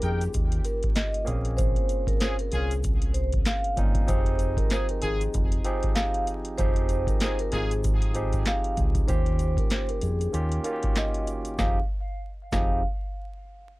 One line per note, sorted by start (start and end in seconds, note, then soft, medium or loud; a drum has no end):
0.00 0.27 F2 medium
0.00 1.29 D#3 medium
0.00 1.25 A#3 medium
0.00 1.26 C#4 medium
0.00 0.22 D#4 medium
0.00 1.29 F4 medium
0.00 1.29 G4 medium
0.00 0.31 G#4 medium
0.00 0.22 A#4 loud
0.00 0.22 G5 medium
0.00 closed hi-hat medium
0.00 shaker soft
0.21 closed hi-hat medium
0.21 shaker medium
0.34 0.58 D#2 medium
0.34 kick loud
0.34 closed hi-hat medium
0.34 shaker medium
0.52 closed hi-hat medium
0.64 0.81 A#4 medium
0.64 closed hi-hat medium
0.64 shaker soft
0.83 kick loud
0.83 closed hi-hat soft
0.96 1.24 D#5 loud
0.96 snare loud
0.96 clap loud
0.96 closed hi-hat medium
0.96 shaker medium
1.14 closed hi-hat soft
1.24 1.75 A#1 loud
1.24 2.27 A#2 medium
1.24 2.27 A#3 medium
1.24 2.27 C4 medium
1.24 2.28 C#4 medium
1.24 2.28 G#4 medium
1.24 closed hi-hat medium
1.24 shaker soft
1.45 closed hi-hat medium
1.57 2.04 C5 loud
1.57 kick loud
1.57 closed hi-hat medium
1.57 shaker medium
1.76 closed hi-hat soft
1.89 closed hi-hat medium
1.89 shaker medium
2.07 2.20 A#4 medium
2.07 kick medium
2.07 closed hi-hat medium
2.20 2.36 C#4 medium
2.20 2.36 F4 medium
2.20 2.36 G#4 loud
2.20 2.37 C5 medium
2.20 snare loud
2.20 clap loud
2.20 closed hi-hat loud
2.20 shaker medium
2.39 2.51 A#4 medium
2.39 closed hi-hat medium
2.51 3.42 C2 medium
2.51 2.73 C#4 loud
2.51 2.73 F4 loud
2.51 2.80 G#4 medium
2.51 2.73 G#4 loud
2.51 closed hi-hat medium
2.51 shaker soft
2.71 closed hi-hat medium
2.71 shaker medium
2.83 kick medium
2.83 closed hi-hat medium
2.83 shaker medium
3.02 closed hi-hat medium
3.14 3.31 C5 medium
3.14 closed hi-hat medium
3.14 shaker soft
3.33 kick medium
3.33 closed hi-hat soft
3.45 3.74 F5 medium
3.45 snare loud
3.45 clap loud
3.45 closed hi-hat medium
3.45 shaker medium
3.64 closed hi-hat soft
3.76 4.01 G1 medium
3.76 3.99 A#2 medium
3.76 3.99 A#3 medium
3.76 3.99 C4 medium
3.76 3.99 C#4 medium
3.76 4.00 D#4 medium
3.76 kick loud
3.76 closed hi-hat medium
3.76 shaker medium
3.95 kick loud
3.95 closed hi-hat medium
4.06 4.57 F1 loud
4.06 4.89 F3 medium
4.06 4.90 C4 medium
4.06 4.90 D#4 medium
4.06 4.90 G4 medium
4.06 4.91 G#4 medium
4.06 4.55 C5 loud
4.06 kick loud
4.06 closed hi-hat medium
4.06 shaker medium
4.26 closed hi-hat soft
4.39 closed hi-hat medium
4.39 shaker medium
4.57 4.70 A#4 medium
4.57 kick loud
4.57 closed hi-hat medium
4.70 4.87 D#4 medium
4.70 4.87 F4 medium
4.70 4.87 G#4 loud
4.70 4.88 C5 medium
4.70 snare loud
4.70 clap loud
4.70 closed hi-hat loud
4.70 shaker medium
4.89 5.02 A#4 medium
4.89 closed hi-hat medium
5.02 5.26 G#1 medium
5.02 5.22 D#4 medium
5.02 5.22 F4 medium
5.02 5.22 G#4 loud
5.02 5.32 G#4 medium
5.02 closed hi-hat medium
5.02 shaker soft
5.21 closed hi-hat medium
5.21 shaker medium
5.34 5.58 F1 loud
5.34 kick medium
5.34 closed hi-hat medium
5.34 shaker medium
5.52 closed hi-hat medium
5.64 6.25 F3 medium
5.64 6.25 C4 medium
5.64 6.25 D#4 medium
5.64 6.26 G4 medium
5.64 6.26 G#4 medium
5.64 5.82 C5 medium
5.64 closed hi-hat medium
5.64 shaker soft
5.83 kick medium
5.83 closed hi-hat soft
5.95 6.24 F5 loud
5.95 snare loud
5.95 clap loud
5.95 closed hi-hat medium
5.95 shaker medium
6.14 closed hi-hat soft
6.27 closed hi-hat medium
6.27 shaker medium
6.45 closed hi-hat medium
6.58 7.07 F1 loud
6.58 7.40 F3 medium
6.58 7.41 C4 medium
6.58 7.41 D#4 medium
6.58 7.41 G4 medium
6.58 7.42 G#4 medium
6.58 7.05 C5 loud
6.58 kick loud
6.58 closed hi-hat medium
6.58 shaker medium
6.76 closed hi-hat soft
6.89 closed hi-hat medium
6.89 shaker medium
7.07 7.20 A#4 medium
7.07 kick medium
7.07 closed hi-hat medium
7.07 shaker medium
7.20 7.37 D#4 medium
7.20 7.37 F4 medium
7.20 7.37 G#4 medium
7.20 7.38 C5 medium
7.20 snare loud
7.20 clap loud
7.20 closed hi-hat loud
7.20 shaker medium
7.39 7.52 A#4 medium
7.39 closed hi-hat medium
7.52 8.42 G#1 medium
7.52 7.72 D#4 loud
7.52 7.72 F4 loud
7.52 7.72 G#4 loud
7.52 7.81 G#4 medium
7.52 snare soft
7.52 closed hi-hat medium
7.52 shaker soft
7.71 closed hi-hat medium
7.71 shaker soft
7.84 kick medium
7.84 closed hi-hat medium
7.84 shaker medium
8.02 closed hi-hat medium
8.14 8.75 F3 medium
8.14 8.75 C4 medium
8.14 8.75 D#4 medium
8.14 8.76 G4 medium
8.14 8.76 G#4 medium
8.14 8.31 C5 medium
8.14 closed hi-hat medium
8.14 shaker soft
8.33 kick medium
8.33 closed hi-hat soft
8.33 shaker medium
8.46 8.75 F5 medium
8.46 snare loud
8.46 clap loud
8.46 closed hi-hat medium
8.46 shaker medium
8.64 closed hi-hat soft
8.77 9.01 C#2 medium
8.77 kick loud
8.77 closed hi-hat medium
8.77 shaker medium
8.95 kick loud
8.95 closed hi-hat medium
8.95 shaker medium
9.07 9.57 D#2 loud
9.07 9.90 D#3 medium
9.07 9.90 A#3 medium
9.07 9.90 C#4 medium
9.07 9.91 F4 medium
9.07 9.91 G4 medium
9.07 9.55 C5 loud
9.07 kick loud
9.07 closed hi-hat medium
9.07 shaker medium
9.26 closed hi-hat soft
9.39 closed hi-hat medium
9.39 shaker medium
9.57 9.70 A#4 medium
9.57 kick medium
9.57 closed hi-hat medium
9.70 9.88 C5 medium
9.70 snare loud
9.70 clap loud
9.70 closed hi-hat loud
9.70 shaker medium
9.89 10.01 A#4 medium
9.89 closed hi-hat medium
10.01 10.27 F2 medium
10.01 10.30 G#4 medium
10.01 closed hi-hat medium
10.01 shaker soft
10.21 closed hi-hat medium
10.21 shaker soft
10.32 10.58 D#2 loud
10.32 10.55 D#3 medium
10.32 10.55 A#3 medium
10.32 10.55 C#4 medium
10.32 10.56 F4 medium
10.32 10.56 G4 medium
10.32 closed hi-hat medium
10.32 shaker medium
10.52 closed hi-hat medium
10.64 11.25 D#3 medium
10.64 11.25 A#3 medium
10.64 11.25 C#4 medium
10.64 11.26 F4 medium
10.64 10.73 F#4 medium
10.64 10.81 A#4 medium
10.64 closed hi-hat medium
10.64 shaker soft
10.73 11.29 G4 medium
10.83 kick medium
10.83 closed hi-hat soft
10.95 11.25 D#5 medium
10.95 snare loud
10.95 clap loud
10.95 closed hi-hat medium
10.95 shaker medium
11.14 closed hi-hat soft
11.27 closed hi-hat medium
11.27 shaker medium
11.45 closed hi-hat medium
11.45 shaker medium
11.58 11.78 F1 loud
11.58 11.78 F3 medium
11.58 11.78 C4 medium
11.58 11.78 D#4 medium
11.58 11.78 G4 medium
11.58 11.78 G#4 medium
11.58 11.78 F5 medium
11.58 kick loud
11.58 snare medium
11.58 shaker medium
12.52 12.82 F1 loud
12.52 12.82 F3 medium
12.52 12.81 C4 medium
12.52 12.82 D#4 medium
12.52 12.82 G4 medium
12.52 12.81 G#4 medium
12.52 12.82 F5 medium
12.52 kick loud
12.52 snare medium
12.52 shaker medium